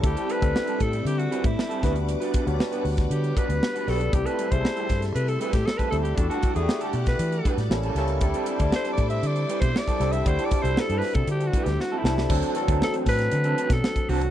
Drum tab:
CC |----------------|----------------|----------------|----------------|
HH |xxxx-xxxxxxx-xxx|xxxx-xoxxxxx-xox|xxxx-xxxxxxx-xxx|xxxx-xxxxxxx-xxx|
SD |----o-------o-o-|----o--o----o-o-|----o-oo---oo---|----o--o---oo-o-|
BD |o--o--o----o--o-|--o----o--o-----|o--o--o----o-o--|o-o----o--o-----|

CC |----------------|----------------|x---------------|
HH |xxxx-xxxxxxx-xxx|xxxx-xoxxxxx----|-xxx-xoxxxxx-xox|
SD |----o-------o-o-|----o-o----oo-oo|----o-oo---oo---|
BD |o--o--o----o-o--|o-o----o--o-----|o--o--o----o-o--|